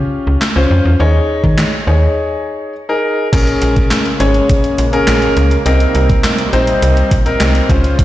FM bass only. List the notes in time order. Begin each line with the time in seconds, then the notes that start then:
0.27 C#2
0.56 C#2
0.71 F2
0.85 E2
1.00 D#2
1.44 D#3
1.87 D#2
3.33 A#1
3.62 A#1
4.20 G#1
4.78 A#1
5.08 A#1
5.37 C#2
5.66 C2
5.95 C2
6.53 A#1
6.82 C2
7.11 A#1
7.41 C2
7.69 C#2